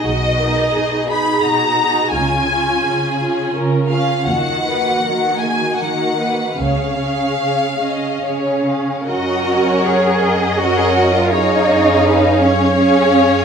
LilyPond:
<<
  \new Staff \with { instrumentName = "Violin section" } { \time 3/4 \key fis \major \tempo 4 = 82 dis''4. b''8 ais''4 | gis''2 r8 eis''8 | fis''4. gis''8 fis''4 | eis''2~ eis''8 r8 |
dis''4 cis''8 dis''4. | cis''4 b'8 cis''4. | }
  \new Staff \with { instrumentName = "Violin section" } { \time 3/4 \key fis \major fis'8 ais'8 gis'4 fis'4 | eis'4 gis'4 ais'8 gis'8 | fis'8 b'8 ais'8 gis'8 ais'8 b'8 | cis''4 cis''8 dis''8 cis''8 eis''8 |
<cis'' fis''>2 <cis'' fis''>4 | <cis'' eis''>2 <cis'' eis''>4 | }
  \new Staff \with { instrumentName = "Viola section" } { \time 3/4 \key fis \major r8 <dis' gis'>4 <dis' gis'>4 <dis' gis'>8 | <cis' eis'>8 <cis' eis'>4 <cis' eis'>4 <cis' eis'>8 | r8 <ais fis'>4 <ais fis'>4 <ais fis'>8 | <cis' gis'>8 <cis' gis'>4 <cis' gis'>4 <cis' gis'>8 |
<cis' ais'>2 <cis' ais'>4 | <cis' gis'>2 <cis' gis'>4 | }
  \new Staff \with { instrumentName = "Cello section" } { \clef bass \time 3/4 \key fis \major b,4 b,4 b,4 | cis4 cis4 cis4 | dis4 dis4 dis4 | cis4 cis4 <cis cis'>4 |
fis'4 gis'4 fis'16 gis'16 fis'16 eis'16 | dis'4. cis'8 cis'4 | }
  \new Staff \with { instrumentName = "Double bass section" } { \clef bass \time 3/4 \key fis \major b,,4 r2 | cis,4 r2 | dis,4 r2 | cis,4 r2 |
fis,2.~ | fis,2. | }
>>